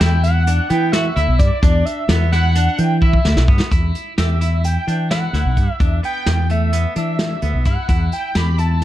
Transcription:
0.00 E2 E4 G5, snare, closed hi-hat
0.24 F#5, closed hi-hat
0.47 D4, closed hi-hat
0.70 E3 B3 G5, closed hi-hat
0.92 F#4 E5, snare, closed hi-hat
1.15 D2 E4 E5, closed hi-hat
1.28 B1
1.39 G2 D5, kick, closed hi-hat
1.63 E2 D4, kick, closed hi-hat
1.85 E5, closed hi-hat
2.08 E2 B3, snare, closed hi-hat
2.32 E4 F#5, snare, closed hi-hat
2.55 D4, closed hi-hat
2.78 E3 G5, closed hi-hat
3.02 E4 E5, kick
3.13 kick
3.25 D2, snare
3.36 B1, snare
3.48 G2 B3, kick
3.60 snare
3.71 E2 E4, kick, closed hi-hat
3.95 closed hi-hat
4.18 E2 G4 E5, snare, closed hi-hat
4.41 E4, closed hi-hat
4.64 G5, closed hi-hat
4.87 E3 D4, closed hi-hat
5.11 E4 F#5, snare, closed hi-hat
5.33 D2 E4, snare, closed hi-hat
5.45 B1
5.57 G2, kick, closed hi-hat
5.74 E5
5.80 E2 D4, kick, closed hi-hat
6.03 B3 G5, closed hi-hat
6.26 E2, snare, closed hi-hat
6.50 A3 E5, closed hi-hat
6.73 B3, closed hi-hat
6.96 E3 D4 E5, closed hi-hat
7.19 snare, closed hi-hat
7.42 D2 B3, closed hi-hat
7.54 B1
7.65 G2 E4 F#5, kick, closed hi-hat
7.89 E2 E4, kick, closed hi-hat
8.12 G5, closed hi-hat
8.35 E2 G4 B5, snare, closed hi-hat
8.58 E4 A5, closed hi-hat

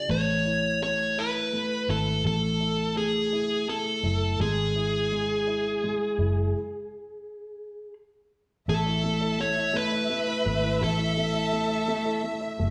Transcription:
Already playing: C#3 F#3 E4 D5
0.09 A1 A3 C#5
0.45 E4
0.82 A3 C#5
1.17 E4 B4
1.53 A3
1.89 G#1 E4 A4
2.25 A1 A3 A4
2.60 E4
2.96 A3 G#4
3.33 E4
3.68 A3 A4
4.03 F#1 E4
4.39 G#1 G#3 G#4
4.76 E4
5.12 G#3
5.47 E4
5.83 G#3
6.19 F#1 E4
8.68 A1 A3 A4 E5
8.86 E4
9.04 A3
9.21 E4
9.39 A3 C#5
9.56 E4
9.73 A3 B4
9.92 E4
10.10 A3
10.27 E4
10.45 G#1 A3
10.63 E4
10.81 A1 A3 A4
10.99 E4
11.17 A3
11.34 E4
11.52 A3
11.70 E4
11.88 A3
12.05 E4
12.23 A3
12.41 E4
12.59 F#1 A3

